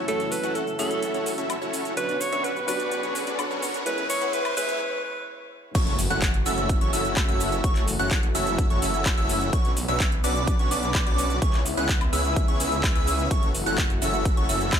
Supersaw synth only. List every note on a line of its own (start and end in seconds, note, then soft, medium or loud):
0.08 0.26 C#4 medium
0.08 0.26 E4 medium
0.08 0.26 F#4 medium
0.08 0.26 A4 medium
0.08 0.26 C#5 loud
0.43 0.62 C#4 medium
0.43 0.62 E4 medium
0.43 0.62 F#4 medium
0.43 0.62 A4 medium
0.43 0.62 F#5 loud
0.79 1.11 C#4 loud
0.79 1.12 E4 medium
0.79 1.11 F#4 medium
0.79 1.12 A4 medium
0.79 1.12 E5 loud
1.14 1.33 C#4 medium
1.14 1.33 E4 medium
1.14 1.33 F#4 medium
1.14 1.33 A4 medium
1.14 1.33 C#5 medium
1.38 1.56 C#4 medium
1.38 1.56 E4 medium
1.38 1.56 F#4 medium
1.38 1.56 A4 medium
1.38 1.56 E5 loud
1.62 1.94 C#4 medium
1.62 1.94 E4 medium
1.62 1.94 F#4 medium
1.62 1.94 A4 medium
1.62 1.94 C#5 loud
1.97 2.15 C#4 medium
1.97 2.15 D4 medium
1.97 2.15 F#4 medium
1.97 2.15 B4 medium
1.97 2.15 C#5 loud
2.32 2.51 C#4 medium
2.32 2.51 D4 medium
2.32 2.51 F#4 medium
2.32 2.51 B4 medium
2.32 2.51 E5 loud
2.68 3.00 C#4 loud
2.68 3.00 D4 medium
2.68 3.00 F#4 medium
2.68 3.00 B4 medium
2.68 3.00 D5 loud
3.03 3.22 C#4 medium
3.03 3.22 D4 medium
3.03 3.22 F#4 medium
3.03 3.22 B4 medium
3.03 3.22 C#5 loud
3.27 3.45 C#4 loud
3.27 3.45 D4 medium
3.27 3.45 F#4 medium
3.27 3.45 B4 medium
3.27 3.45 D5 loud
3.51 3.83 C#4 medium
3.51 3.83 D4 medium
3.51 3.83 F#4 medium
3.51 3.83 B4 medium
3.51 3.83 C#5 loud
3.86 4.04 C#4 medium
3.86 4.04 E4 medium
3.86 4.04 G#4 medium
3.86 4.04 B4 medium
3.86 4.04 C#5 loud
4.21 4.40 C#4 medium
4.21 4.40 E4 medium
4.21 4.40 G#4 medium
4.21 4.40 B4 medium
4.21 4.40 F#5 loud
4.57 4.80 C#4 medium
4.57 4.80 E4 medium
4.57 4.80 G#4 medium
4.57 4.80 B4 medium
4.57 4.80 E5 loud
5.75 5.93 C#4 medium
5.75 5.93 E4 medium
5.75 5.93 F#4 medium
5.75 5.93 A4 medium
5.75 5.93 C#5 loud
6.10 6.29 C#4 loud
6.10 6.29 E4 medium
6.10 6.29 F#4 medium
6.10 6.29 A4 medium
6.10 6.29 F#5 loud
6.46 6.78 C#4 loud
6.46 6.78 E4 medium
6.46 6.78 F#4 medium
6.46 6.78 A4 medium
6.46 6.78 E5 loud
6.81 6.91 C#4 medium
6.81 6.91 E4 medium
6.81 6.91 F#4 medium
6.81 6.91 A4 medium
6.81 6.91 C#5 loud
6.93 7.26 C#4 medium
6.93 7.26 E4 medium
6.93 7.26 F#4 medium
6.93 7.26 A4 medium
6.93 7.26 E5 loud
7.28 7.61 C#4 loud
7.28 7.61 E4 medium
7.28 7.61 F#4 medium
7.28 7.61 A4 medium
7.28 7.61 E5 loud
7.64 7.82 C#4 medium
7.64 7.82 E4 medium
7.64 7.82 F#4 medium
7.64 7.82 A4 medium
7.64 7.82 C#5 loud
7.99 8.18 C#4 medium
7.99 8.18 E4 medium
7.99 8.18 F#4 medium
7.99 8.18 A4 medium
7.99 8.18 F#5 loud
8.35 8.67 C#4 loud
8.35 8.67 E4 medium
8.35 8.67 F#4 medium
8.35 8.67 A4 medium
8.35 8.67 E5 loud
8.70 8.80 C#4 medium
8.70 8.80 E4 medium
8.70 8.80 F#4 medium
8.70 8.80 A4 medium
8.70 8.80 C#5 loud
8.82 9.15 C#4 medium
8.82 9.15 E4 medium
8.82 9.15 F#4 medium
8.82 9.15 A4 medium
8.82 9.15 E5 medium
9.17 9.50 C#4 loud
9.17 9.50 E4 medium
9.17 9.50 F#4 medium
9.17 9.50 A4 medium
9.17 9.50 E5 loud
9.53 9.71 C#4 loud
9.53 9.71 D4 medium
9.53 9.71 F#4 medium
9.53 9.71 B4 medium
9.53 9.71 C#5 loud
9.88 10.07 C#4 loud
9.88 10.07 D4 medium
9.88 10.07 F#4 medium
9.88 10.07 B4 medium
9.88 10.07 E5 loud
10.24 10.56 C#4 medium
10.24 10.56 D4 medium
10.24 10.56 F#4 medium
10.24 10.56 B4 medium
10.24 10.56 D5 loud
10.59 10.69 C#4 medium
10.59 10.69 D4 medium
10.59 10.69 F#4 medium
10.59 10.69 B4 medium
10.59 10.69 C#5 loud
10.71 11.04 C#4 medium
10.71 11.04 D4 medium
10.71 11.04 F#4 medium
10.71 11.04 B4 medium
10.71 11.04 D5 medium
11.06 11.39 C#4 loud
11.06 11.39 D4 medium
11.06 11.39 F#4 loud
11.06 11.39 B4 medium
11.06 11.39 D5 loud
11.42 11.60 C#4 loud
11.42 11.60 E4 medium
11.42 11.60 G#4 medium
11.42 11.60 B4 medium
11.42 11.60 C#5 loud
11.77 11.96 C#4 loud
11.77 11.96 E4 medium
11.77 11.96 G#4 medium
11.77 11.96 B4 medium
11.77 11.96 F#5 loud
12.13 12.45 C#4 loud
12.13 12.45 E4 medium
12.13 12.45 G#4 medium
12.13 12.45 B4 medium
12.13 12.45 E5 loud
12.48 12.58 C#4 medium
12.48 12.58 E4 medium
12.48 12.58 G#4 medium
12.48 12.58 B4 medium
12.48 12.58 C#5 loud
12.60 12.93 C#4 medium
12.60 12.93 E4 medium
12.60 12.93 G#4 medium
12.60 12.93 B4 medium
12.60 12.93 E5 medium
12.95 13.28 C#4 loud
12.95 13.28 E4 medium
12.95 13.28 G#4 medium
12.95 13.28 B4 medium
12.95 13.28 E5 loud
13.31 13.49 C#4 medium
13.31 13.49 E4 medium
13.31 13.49 F#4 medium
13.31 13.49 A4 medium
13.31 13.49 C#5 loud
13.66 13.85 C#4 loud
13.66 13.85 E4 medium
13.66 13.85 F#4 medium
13.66 13.85 A4 medium
13.66 13.85 F#5 loud
14.02 14.34 C#4 loud
14.02 14.34 E4 medium
14.02 14.34 F#4 medium
14.02 14.34 A4 medium
14.02 14.34 E5 loud
14.37 14.47 C#4 medium
14.37 14.47 E4 medium
14.37 14.47 F#4 medium
14.37 14.47 A4 medium
14.37 14.47 C#5 loud
14.49 14.80 C#4 medium
14.49 14.80 E4 medium
14.49 14.80 F#4 medium
14.49 14.80 A4 medium
14.49 14.80 E5 loud